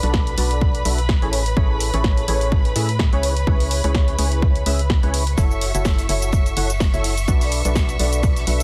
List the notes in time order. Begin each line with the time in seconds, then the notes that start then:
Already playing: B4 B5
0.03 B1 D4 F#4 A4 B4 D5, closed hi-hat
0.14 kick, snare
0.27 closed hi-hat
0.38 B1 D4 F#4 A4 B4 D5, open hi-hat
0.51 closed hi-hat
0.61 kick
0.75 closed hi-hat
0.85 B1 D4 F#4 A4 B4 E5, open hi-hat
0.98 closed hi-hat
1.09 kick, snare
1.22 A1 C#4 E4 G#4 A4 C#5, closed hi-hat
1.33 open hi-hat
1.46 closed hi-hat
1.57 A1 C#4 E4 G#4 A4 C#5, kick
1.80 open hi-hat
1.94 A1 C#4 E4 G#4 A4 C#5, closed hi-hat
2.04 kick, snare
2.17 closed hi-hat
2.28 A1 C#4 E4 G#4 A4 C#5, open hi-hat
2.41 closed hi-hat
2.52 kick
2.65 closed hi-hat
2.76 A2 C#4 E4 G#4 A4 E5, open hi-hat
2.89 closed hi-hat
2.99 kick, snare
3.13 C#2 C#4 E4 G#4 B4 C#5, closed hi-hat
3.23 open hi-hat
3.37 closed hi-hat
3.47 C#2 C#4 E4 G#4 B4 C#5, kick
3.60 open hi-hat
3.71 open hi-hat
3.84 C#2 C#4 E4 G#4 B4 C#5, closed hi-hat
3.95 kick, snare
4.08 closed hi-hat
4.19 C#2 C#4 E4 G#4 B4 C#5, open hi-hat
4.32 closed hi-hat
4.42 kick
4.56 closed hi-hat
4.66 C#2 C#4 E4 G#4 B4 E5, open hi-hat
4.79 closed hi-hat
4.90 kick, snare
5.03 C#2 C#4 E4 G#4 B4 C#5, closed hi-hat
5.14 open hi-hat
5.27 closed hi-hat
5.38 F#1 E4 F#4 A4 C#5 E5 C#6, kick, closed hi-hat, shaker
5.51 shaker
5.61 snare, closed hi-hat, open hi-hat
5.75 F#1 E4 F#4 A4 C#5 E5, closed hi-hat, shaker
5.85 kick, snare, closed hi-hat, shaker
5.98 closed hi-hat, shaker
6.09 F#1 E4 F#4 A4 C#5 E5, closed hi-hat, open hi-hat
6.22 closed hi-hat, shaker
6.32 kick, closed hi-hat, shaker
6.46 closed hi-hat, shaker
6.57 F#1 E4 F#4 A4 C#5 F#5, closed hi-hat, open hi-hat
6.70 snare, closed hi-hat, shaker
6.80 kick, snare, closed hi-hat, shaker
6.94 F#1 E4 F#4 A4 C#5 E5, closed hi-hat, shaker
7.04 open hi-hat
7.17 closed hi-hat, shaker
7.27 B1 D4 F#4 A4 B4 D5, kick, closed hi-hat, shaker
7.41 snare, open hi-hat, shaker
7.52 closed hi-hat, open hi-hat
7.65 B1 D4 F#4 A4 B4 D5, closed hi-hat, shaker
7.75 kick, snare, closed hi-hat, shaker
7.89 closed hi-hat, shaker
7.99 B1 D4 F#4 A4 B4 D5, snare, closed hi-hat, open hi-hat
8.13 closed hi-hat, shaker
8.23 kick, closed hi-hat, shaker
8.36 snare, closed hi-hat, shaker
8.47 B1 D4 F#4 A4 B4 E5, closed hi-hat, open hi-hat